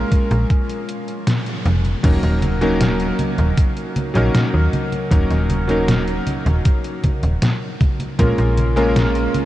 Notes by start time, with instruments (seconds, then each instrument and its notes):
Already playing: electric grand piano G#3 A#3 C#4 F4 A#4
0.11 kick, closed hi-hat
0.31 fm bass A#1, closed hi-hat
0.50 kick, closed hi-hat
0.69 closed hi-hat
0.88 closed hi-hat
1.08 closed hi-hat
1.27 snare, closed hi-hat
1.46 closed hi-hat
1.65 fm bass F1, closed hi-hat
1.84 closed hi-hat
2.03 fm bass D#1, electric grand piano F#3 A#3 C#4 D#4 A#4, kick, closed hi-hat, crash, high conga
2.23 fm bass D#1, closed hi-hat
2.42 closed hi-hat, high conga
2.61 electric grand piano F#3 A#3 C#4 D#4 A#4, closed hi-hat, high conga
2.81 snare, closed hi-hat, high conga
3.00 closed hi-hat
3.19 closed hi-hat, high conga
3.38 fm bass D#1, closed hi-hat, high conga
3.58 kick, closed hi-hat, high conga
3.77 closed hi-hat
3.96 closed hi-hat, high conga
4.14 fm bass A#1, electric grand piano F#3 A#3 C#4 D#4 A#4, closed hi-hat, high conga
4.35 snare, closed hi-hat, high conga
4.54 fm bass D#2
4.73 closed hi-hat, high conga
4.92 closed hi-hat, high conga
5.11 fm bass D#1, electric grand piano F#3 A#3 C#4 D#4 A#4, kick, closed hi-hat, high conga
5.31 fm bass D#1, snare, closed hi-hat
5.50 closed hi-hat, high conga
5.68 electric grand piano F#3 A#3 C#4 D#4 A#4, closed hi-hat, high conga
5.88 snare, closed hi-hat, high conga
6.08 closed hi-hat
6.27 closed hi-hat, high conga
6.46 fm bass D#1, closed hi-hat, high conga
6.65 kick, closed hi-hat, high conga
6.84 closed hi-hat
7.04 kick, closed hi-hat, high conga
7.23 fm bass D#1, closed hi-hat, high conga
7.42 snare, closed hi-hat, high conga
7.81 kick, closed hi-hat, high conga
8.00 closed hi-hat, high conga
8.19 fm bass A#1, electric grand piano G#3 A#3 C#4 F4 A#4, kick, closed hi-hat, high conga
8.38 fm bass A#1, closed hi-hat
8.58 closed hi-hat, high conga
8.76 electric grand piano G#3 A#3 C#4 F4 A#4, closed hi-hat, high conga
8.96 snare, closed hi-hat, high conga
9.15 closed hi-hat
9.35 closed hi-hat, high conga